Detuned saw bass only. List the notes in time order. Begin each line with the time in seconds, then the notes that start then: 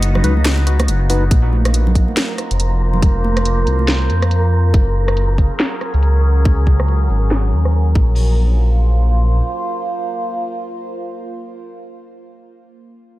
Already playing: F#1
0.24 C#2
0.88 F#1
1.31 A#1
2.51 F1
3.67 C2
4.10 F2
4.74 F#1
5.94 C#2
7.10 G#1
7.53 D#2
7.95 A#1